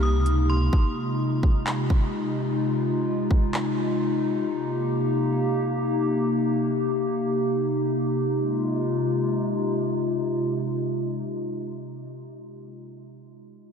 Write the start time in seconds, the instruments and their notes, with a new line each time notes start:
Already playing: 808-style bass C2, ambient pad C3 A#3 D#4 G4
0.03 synth bell D#6
0.14 808-style bass C#2
0.26 closed hi-hat
0.50 synth bell C6
0.73 ambient pad C3 G#3 D#4 F4, kick
1.43 kick
1.67 clap
1.90 kick
3.31 kick
3.54 clap
4.48 ambient pad C3 A#3 G4
8.23 ambient pad C3 G#3 D#4 F4